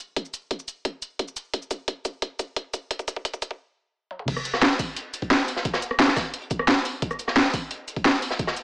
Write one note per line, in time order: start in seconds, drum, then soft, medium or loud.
0.16 kick loud
0.16 closed hi-hat medium
0.25 shaker soft
0.34 closed hi-hat medium
0.34 shaker medium
0.51 kick loud
0.51 closed hi-hat medium
0.59 shaker soft
0.68 closed hi-hat medium
0.68 shaker medium
0.85 kick loud
0.85 closed hi-hat medium
1.02 closed hi-hat medium
1.02 shaker medium
1.19 kick loud
1.19 closed hi-hat medium
1.28 shaker soft
1.37 closed hi-hat medium
1.37 shaker medium
1.54 kick loud
1.54 closed hi-hat medium
1.62 shaker soft
1.71 kick loud
1.71 closed hi-hat medium
1.71 shaker medium
1.88 kick loud
1.88 closed hi-hat loud
2.05 kick loud
2.05 closed hi-hat medium
2.05 shaker medium
2.22 kick loud
2.22 closed hi-hat loud
2.39 kick loud
2.39 closed hi-hat medium
2.39 shaker medium
2.56 kick loud
2.56 closed hi-hat loud
2.74 kick loud
2.74 closed hi-hat medium
2.74 shaker medium
2.91 kick loud
2.91 closed hi-hat loud
2.99 kick medium
2.99 shaker soft
3.08 kick loud
3.08 closed hi-hat medium
3.08 shaker medium
3.16 kick medium
3.25 kick loud
3.25 closed hi-hat loud
3.34 kick medium
3.34 shaker soft
3.42 kick loud
3.42 closed hi-hat medium
3.42 shaker medium
3.51 kick medium
4.11 high tom medium
4.19 mid tom medium
4.28 kick loud
4.28 closed hi-hat loud
4.28 closed hi-hat medium
4.28 crash loud
4.37 cross-stick soft
4.37 shaker soft
4.45 closed hi-hat medium
4.45 shaker medium
4.54 cross-stick soft
4.54 snare soft
4.62 snare loud
4.62 closed hi-hat medium
4.62 closed hi-hat loud
4.71 snare soft
4.79 kick loud
4.79 closed hi-hat medium
4.79 open hi-hat medium
4.79 shaker medium
4.96 closed hi-hat medium
4.96 closed hi-hat loud
5.14 closed hi-hat medium
5.14 shaker medium
5.22 kick medium
5.22 closed hi-hat soft
5.31 snare loud
5.31 closed hi-hat loud
5.31 closed hi-hat medium
5.48 closed hi-hat medium
5.48 open hi-hat medium
5.48 shaker medium
5.56 snare medium
5.65 kick loud
5.65 closed hi-hat loud
5.74 cross-stick soft
5.74 snare medium
5.74 shaker soft
5.82 closed hi-hat medium
5.82 shaker medium
5.91 cross-stick soft
5.99 snare loud
5.99 closed hi-hat medium
6.08 snare soft
6.08 snare medium
6.08 shaker soft
6.17 kick loud
6.17 cross-stick soft
6.17 snare medium
6.17 closed hi-hat medium
6.17 open hi-hat medium
6.17 shaker medium
6.34 closed hi-hat loud
6.34 open hi-hat medium
6.41 closed hi-hat soft
6.50 kick loud
6.50 closed hi-hat medium
6.50 shaker medium
6.59 cross-stick soft
6.68 snare loud
6.68 closed hi-hat medium
6.85 closed hi-hat medium
6.85 open hi-hat medium
6.85 shaker medium
7.02 kick loud
7.02 closed hi-hat medium
7.11 cross-stick soft
7.11 shaker soft
7.19 closed hi-hat medium
7.19 shaker medium
7.28 cross-stick soft
7.28 snare soft
7.36 snare loud
7.36 closed hi-hat medium
7.45 snare soft
7.54 kick loud
7.54 closed hi-hat medium
7.54 open hi-hat medium
7.54 shaker medium
7.71 closed hi-hat medium
7.88 closed hi-hat medium
7.88 shaker medium
7.96 kick medium
7.96 closed hi-hat soft
8.05 snare loud
8.05 closed hi-hat loud
8.05 closed hi-hat medium
8.13 closed hi-hat soft
8.22 closed hi-hat medium
8.22 open hi-hat medium
8.22 shaker medium
8.30 snare medium
8.39 kick loud
8.39 closed hi-hat medium
8.47 cross-stick soft
8.47 snare medium
8.47 shaker soft
8.57 closed hi-hat medium
8.57 shaker medium